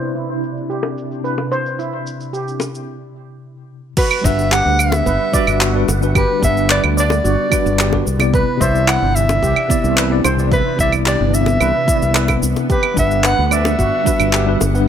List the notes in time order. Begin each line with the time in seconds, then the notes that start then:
Already playing: C3 D4 E4 C5 D5
0.03 shaker
0.15 E4, shaker
0.43 shaker
0.57 shaker
0.70 G4, shaker
0.83 high bongo
0.98 shaker
1.12 shaker
1.24 B4, shaker
1.38 high bongo
1.52 C5, shaker
1.66 shaker
1.79 E4, shaker
2.07 shaker
2.20 shaker
2.33 G4, shaker
2.48 shaker
2.60 high bongo, shaker
2.75 shaker
3.96 D3 G3 B3 F#4 B4 F#5, kick, crash, shaker
4.11 claves
4.21 G1 G3 D4 E5, kick, shaker
4.25 B4 F#5
4.39 shaker
4.52 G4 F#5, clap, shaker
4.65 D2
4.79 E5, claves, shaker
4.92 high bongo, shaker
5.06 G1 B4, kick, shaker
5.32 G3 D4 F#4 B4 D5, kick, shaker
5.47 G1, claves, shaker
5.61 F#4, clap, shaker
5.73 G3 D4 F#4 B4
5.88 G1, high bongo, shaker
6.01 G3 D4 F#4 B4, shaker
6.15 G4 B4, kick, claves, shaker
6.40 G1 G3 D4, kick, shaker
6.44 B4 E5 F#5
6.57 shaker
6.70 B4 D5, clap, shaker
6.84 D2, claves
6.97 D5, shaker
7.10 high bongo, shaker
7.24 G1 F#4, shaker
7.50 G3 D4 F#4 B4, kick, claves, shaker
7.66 G1, shaker
7.79 G4, clap, shaker
7.91 G3 D4 F#4 B4, kick, high bongo
8.07 C2, shaker
8.18 C3 B3 E4 D5, high bongo, claves, shaker
8.33 C3 E3 D4 B4, kick, shaker
8.57 C2 C3 C5 E5, kick
8.62 E4 D5, shaker
8.75 shaker
8.88 E4 F#5, clap, claves, shaker
9.02 G1
9.15 E5, shaker
9.29 high bongo, shaker
9.42 C2 G4, kick, shaker
9.56 claves
9.68 C3 B3 E4 D5, kick, shaker
9.84 C2, shaker
9.97 B4, clap, shaker
10.09 C3 B3 E4 D5
10.24 C2 C5, high bongo, claves, shaker
10.37 C3 E4 D5, shaker
10.52 E4 B4, kick, shaker
10.76 C2 C3, kick, shaker
10.80 E4 D5 E5
10.92 claves, shaker
11.06 G4 D5, clap, shaker
11.20 G1
11.34 E5, shaker
11.46 high bongo, shaker
11.60 C2 B4, claves, shaker
11.85 C3 B3 E4, kick, shaker
11.89 E4 D5
12.02 C2, shaker
12.15 B4, clap, shaker
12.28 kick, high bongo, claves, shaker
12.43 C2, shaker
12.56 high bongo, shaker
12.69 D3 G3 G4 B4 F#5, kick, shaker
12.83 claves
12.94 G1 G3 D4, kick, shaker
12.98 B4 E5 F#5
13.11 shaker
13.24 B4 F#5, clap, shaker
13.38 D2
13.46 F#5
13.51 D5 E5, claves, shaker
13.65 high bongo, shaker
13.79 G1 F#4, kick, shaker
14.04 G3 D4 F#4 B4, kick, shaker
14.20 G1, claves, shaker
14.33 G4, clap, shaker
14.45 G3 D4 F#4 B4
14.61 G1, high bongo, shaker
14.73 G3 D4 B4 F#5, shaker